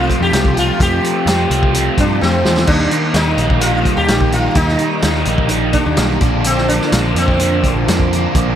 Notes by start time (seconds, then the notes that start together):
Already playing: F3 A3 C4 F4 G4 G5 A5
0.10 kick, closed hi-hat
0.20 F2 G4
0.32 C2 F3 A3 C4 F4, snare, closed hi-hat
0.45 kick
0.54 A3 C4 F4, closed hi-hat
0.59 F4
0.79 F2 F3 A3 C4 G4, kick, closed hi-hat
0.83 F4
1.01 A3 C4 F4, closed hi-hat
1.26 F2 F3 A3 C4 F4, snare, closed hi-hat
1.48 C2 C4 F4, closed hi-hat
1.52 A3
1.63 kick
1.72 F3 A3 C4 F4, closed hi-hat
1.98 G2 D4, kick, closed hi-hat
2.19 F2 F3 A3 C4 F4, snare
2.44 E2 A3 C4 F4, snare
2.56 snare
2.67 D#2 D#3 G3 A#3 D4 D#4 G4 G5 A#5, kick, splash, crash
2.90 G3 A#3 D#4, closed hi-hat
3.13 D#2 D#3 G3 A#3 D#4, snare, closed hi-hat
3.37 A#1 A#3 D#4, closed hi-hat
3.42 G3
3.50 kick
3.60 D#3 G3 A#3 D#4 F4, closed hi-hat
3.85 kick, closed hi-hat
3.97 D#2 G4
4.08 A#1 D#3 G3 A#3 D#4, snare, closed hi-hat
4.21 kick
4.32 A#3 D#4 F4, closed hi-hat
4.37 G3
4.55 D#2 D#3 G3 A#3 D#4, kick, closed hi-hat
4.60 D#4
4.68 snare
4.79 A#3 D#4, closed hi-hat
4.83 G3
5.02 D#2 D#3 G3 A#3, snare, closed hi-hat
5.07 D#4
5.14 snare
5.25 A#1 A#3 D#4, closed hi-hat
5.30 G3
5.38 kick
5.49 D#3 G3 A#3 D#4, closed hi-hat
5.73 D4, kick, closed hi-hat
5.86 D#2
5.95 B1 D#3 G3 A#3 D#4, snare, closed hi-hat
6.20 A#1 D3 F3 A#3 D4 A#4 D5 C6, kick, closed hi-hat
6.25 A#2
6.44 A#2 D3 F3 A#3 C4 D4, closed hi-hat
6.57 snare
6.68 A#3 D4, closed hi-hat
6.72 F3
6.81 snare
6.92 A#1 D3 F3 A#3 D4, snare, closed hi-hat
7.15 F2 A#3 C4 D4, closed hi-hat
7.20 F3
7.28 kick
7.38 A#2 D3 F3 A#3 D4, closed hi-hat
7.64 kick, closed hi-hat
7.75 A#1
7.85 F2 D3 F3 A#3 D4, snare, closed hi-hat
8.00 kick
8.11 F3 A#3 D4, closed hi-hat
8.34 A#1 A#2 D3 F3 A#3 D4, kick, closed hi-hat